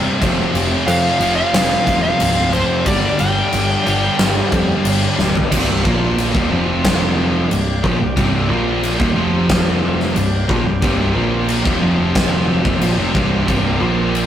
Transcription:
Already playing: C2 G2 C3 G3 C4 C5
0.21 F1 F2 C3 F3 C4 G4, kick, crash
0.54 F1, crash
0.87 F2 F5, crash
1.20 F1 F2 C3 F3, crash
1.36 F5
1.53 F1, snare, crash
1.87 F1, kick, crash
2.02 F5
2.20 C1, crash
2.51 F2 C3 F3 C5, crash
2.85 G1 G2 D3 G3 D4 G4 D5, kick, crash
3.19 G1 G5, crash
3.52 G1, crash
3.85 G1 G2 D3 G3, crash
4.19 G1, snare, crash
4.52 F2, kick, crash
4.85 G1, crash
5.16 D1 G2 D3 G3, snare
5.35 floor tom
5.51 C1 C2 G2 C3 C4 G4 D5, kick, crash
5.85 A#1 A#2 F3 A#3, kick
6.18 crash
6.35 D#1 D#2 A#2, kick
6.51 F1 F2 C3 F3
6.85 kick, snare, crash
7.49 C1 C2 G2 D5, crash
7.83 A#1 A#2 F3, kick
8.00 C1 C2 G2
8.16 C1 C2 G2 C3, kick, crash
8.49 A#1 A#2 F3 A#3
8.83 crash
9.00 D#1 D#2 A#2, kick
9.14 F1 F2 C3 F3 G4
9.50 kick, snare, crash
10.00 snare
10.15 C1 C2 G2 D5, crash
10.48 A#1 A#2 F3, kick
10.65 C1 C2 G2
10.82 C1 C2 G2 C3, kick, crash
11.14 A#1 A#2 F3 A#3
11.49 crash
11.65 D#1 D#2 A#2, kick
11.80 F1 F2 C3 F3
12.15 kick, snare, crash
12.64 F1 F2 C3 D5, kick
12.81 A#1 A#2 F3, crash
12.97 F1 F2 C3
13.14 C1 C2 G2 C3, kick
13.47 C1 C2 G2 C3, kick, crash
13.80 A#1 A#2 F3 A#3
14.15 crash

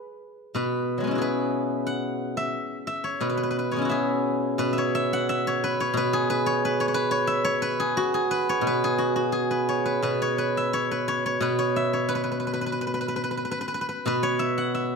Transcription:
Already playing: G#4 B4
0.55 B2 B4
0.98 F#3 G#3
1.04 B3 C#4
1.11 E4
1.15 F#4 G#4
1.21 B4
1.87 F#5
2.37 E5
2.87 E5
3.04 C#5
3.21 B2 B4
3.29 B4
3.37 B4
3.43 B4
3.51 B4
3.59 B4
3.71 G#3 C#5
3.76 B3 C#4
3.82 E4 F#4
3.89 G#4 E5
4.58 B2 B4
4.73 E5
4.78 C#5
4.95 E5
5.13 F#5
5.29 E5
5.47 C#5
5.64 B4
5.80 C#5
5.94 B2 B4
6.13 G#4
6.30 B4
6.46 C#5
6.65 B4
6.80 C#5
6.88 C#5
6.94 B4
7.11 C#5
7.27 E5
7.44 C#5
7.62 B4
7.80 G#4
7.97 F#4
8.14 G#4
8.31 B4
8.49 C#5
8.61 B2
8.67 B4
8.84 G#4
8.98 F#4
9.16 F#4
9.32 G#4
9.51 B4
9.69 C#5
9.86 B4
10.02 B2 B4
10.22 C#5
10.38 B4
10.57 E5
10.73 C#5
10.91 B4
11.08 C#5
11.26 C#5
11.41 B2 B4
11.59 C#5
11.76 E5
11.93 C#5
12.09 B4
12.15 B4
12.24 B4
12.31 B4
12.40 B4
12.47 B4
12.53 B4
12.61 B4
12.66 B4
12.72 B4
12.81 B4
12.87 B4
12.94 B4
13.01 B4
13.08 B4
13.16 B4
13.24 B4
13.31 B4
13.37 B4
13.45 B4
13.51 B4
13.61 B4
13.68 B4
13.74 B4
13.81 B4
13.89 B4
14.06 B2 B4
14.23 C#5
14.39 E5
14.58 F#5
14.75 E5

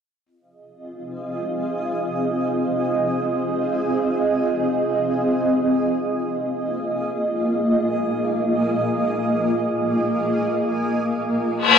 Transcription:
11.56 reverse cymbal

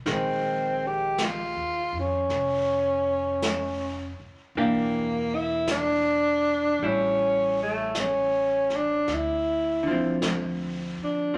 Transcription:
0.06 A#1 D#3 G#3, brush sweep, snare
0.10 C4
0.87 G4
1.18 brush sweep, snare, hi-hat pedal
1.25 F4
1.56 D#2
1.93 F2
2.00 C#4
2.29 F1, brush sweep, snare
3.42 brush sweep, snare, hi-hat pedal
4.20 muted upright bass stroke
4.55 E1 E3 A#3 D4 G4, brush sweep
4.60 A#3
5.35 E4
5.67 D4, brush sweep, snare, hi-hat pedal
6.79 A1 G3, brush sweep
6.84 C#4 E4
7.62 A3
7.95 brush sweep, snare, hi-hat pedal
7.99 C#4
8.70 snare
8.76 D4
9.08 D2, brush sweep, snare
9.14 E4
9.83 D3
9.87 F3 C4
10.22 brush sweep, snare, hi-hat pedal
10.98 muted upright bass stroke
11.04 D4
11.34 A1 F3, brush sweep

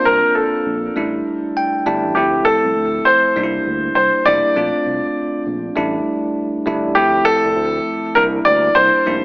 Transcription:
Already playing: A#3 C4 D4 F4
0.05 C2 A#4
0.35 A4
0.66 A#1
0.96 A1 G3 A3 D4 E4
1.57 G5
1.86 G1 G3 A3 D4 E4 A5
2.04 A1
2.15 D2 F3 A3 C4 E4 G4
2.45 A4
2.64 C2
2.76 D2
3.05 C5
3.36 C2 G3 A#3 D4 D#4
3.44 E4
3.66 D2
3.95 C2 C5
4.25 F1 G3 A#3 D4 E4 D5
4.56 A#1 A3 C4 D4 F4
4.86 C2
5.46 A#1
5.76 A1 G3 A3 D4 E4
6.66 G1 G3 A3 D4 E4
6.84 A1
6.95 D2 F3 A3 C4 E4 G4
7.25 A4
7.44 C2
7.56 D2
8.15 C2 G3 A#3 D4 E4 A#4
8.45 D2 D5
8.75 C2 C5
9.06 F1 G3 A#3 D4 E4

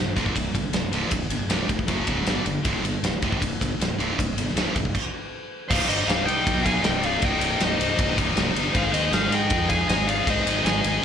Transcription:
Already playing: C2 G2
0.16 C1 C2 G2 C3, kick, ride
0.26 kick
0.35 C1 C2 G2, kick, ride
0.54 G1 C2 G2, kick, ride
0.73 C1 C2 G2, snare, ride
0.91 C1 C2 G2 C3, ride
1.11 C1 C2 G2, kick, ride
1.29 G1 C2 G2, ride
1.48 C1 C2 G2 C3, snare, ride
1.69 F1 C2 G2, kick, ride
1.79 kick
1.87 F#1 F#2 C#3 F#3, kick, ride
2.07 C#1 F#2 C#3 F#3, kick, ride
2.26 G1 G2 D3 G3, snare, ride
2.45 G1 G2 D3, ride
2.63 C1 C2 G2 C3, kick, ride
2.83 G1 C2 G2, ride
3.03 C1 C2 G2, snare, ride
3.22 C1 C2 G2 C3, kick, ride
3.32 kick
3.41 C1 C2 G2, kick, ride
3.61 G1 C2 G2, kick, ride
3.79 C1 C2 G2, snare, ride
3.98 C1 C2 G2 C3, ride
4.18 C1 C2 G2, kick, ride
4.37 G1 C2 G2, ride
4.48 snare
4.54 C1 C2 G2, snare, ride
4.58 C3
4.75 C1 C2 G2, kick, ride
4.85 kick
4.95 kick, crash
5.68 C1 C2 G2 G3 D#4 C5 F5, kick, crash
5.72 C3
5.79 G3 D#4
5.87 G1 G3 D#4 C5 D#5, ride
5.94 G3 D#4
6.02 G3 D#4
6.08 C1 G3 D#4 C5 F5, snare, ride
6.16 G3 D#4
6.24 C2 G3 D#4 D#5 G5
6.28 G3 D#4, ride
6.38 G3 D#4
6.46 B1 G3 D#4, kick, ride
6.55 G3 D#4
6.62 G3 D#4 F5, kick, ride
6.66 G3 G#5
6.71 D#4
6.76 G3 D#4
6.83 C1 G3 D#4 D#5 G5, snare, ride
6.92 G3 D#4
7.00 G3 D#4 D5, ride
7.05 G3 D#4 F5
7.14 G3 D#4
7.21 C1 C2 G3 D#4 D#5 G5, kick, ride
7.25 G2 C3
7.31 G3 D#4
7.38 C1 G3 D#4, ride
7.46 G3 D#4
7.53 G3 D#4
7.60 C1 G3 D#4 C5, snare, ride
7.65 D#5
7.69 G3 D#4
7.76 C1 G3 D#4
7.81 G3 D#4, ride
7.91 G3 D#4
7.98 C1 G3 D#4, kick, ride
8.07 G3 D#4
8.14 G3 D#4, kick
8.18 G3 D#4, ride
8.28 G3 D#4
8.35 C1 G3 D#4, snare, ride
8.43 G3 D#4
8.51 G1 G3 D#4
8.56 G3 D#4, ride
8.67 G3 D#4
8.73 G#1 G#2 D#3 G#3 D#4 G#4 C5 F5, kick, ride
8.82 D#4 G#4
8.89 D#2 D#4 G#4 C5
8.93 D#5, snare, ride
8.98 D#4 G#4
9.05 D#4 G#4
9.10 G#1 D#4 G#4 C5 F5, snare, ride
9.21 D#4 G#4
9.28 G#2 D#4 G#4 D#5, ride
9.34 D#4 G#4 G5
9.43 D#4 G#4
9.49 F2 D#4 G#4, kick, ride
9.58 D#4 G#4
9.65 D#4 G#4
9.69 D#4 F5 G#5, kick, ride
9.73 G#4
9.81 D#4 G#4
9.88 G#1 D#4 G#4 D#5 G#5, snare, ride
9.95 D#4 G#4
10.03 D#4 G#4 F5
10.08 D#4 G#4 D5, ride
10.18 D#4 G#4
10.27 G#1 G#2 D#3 G#3 D#4 G#4 C5 D#5, kick, ride
10.35 D#4 G#4
10.42 G#1 D#4 G#4
10.47 D#4 G#4, snare, ride
10.57 D#4 G#4
10.65 G#1 D#4 G#4 D#5 G#5, snare, ride
10.73 D#4 G#4
10.81 D#4 G#4, ride
10.85 G#1 D#4 G#4
10.96 D#4 G#4

